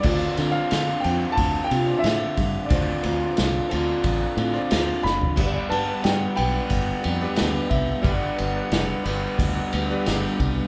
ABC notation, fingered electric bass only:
X:1
M:4/4
L:1/8
Q:1/4=90
K:Ddor
V:1 name="Fingered electric bass" clef=bass
D,, D, D, F,, D,, C, A,, G,, | D,, D,, C,, D,, A,,, A,, D,, ^F,,, | G,,, G,, G,, B,,, G,,, F,, D,, C,, | G,,, G,,, F,,, G,,, D,, D,, G,,, C,, |]